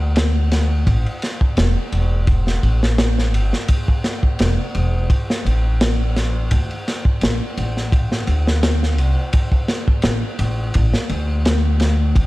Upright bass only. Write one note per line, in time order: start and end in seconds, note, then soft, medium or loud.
0.00 0.83 D2 loud
0.87 1.03 A1 medium
1.57 1.74 E1 medium
1.92 2.60 E1 medium
2.63 3.34 A1 medium
3.34 3.50 G1 medium
4.40 4.56 E1 medium
4.75 5.06 E1 medium
5.45 6.48 A1 medium
6.51 6.68 D2 medium
7.22 7.39 A1 medium
7.58 8.25 A1 medium
8.27 8.98 D2 medium
8.98 9.15 C2 medium
10.04 10.21 A1 medium
10.39 10.71 A1 medium
10.76 10.92 A1 loud
11.10 12.13 D2 loud
12.16 12.27 A1 medium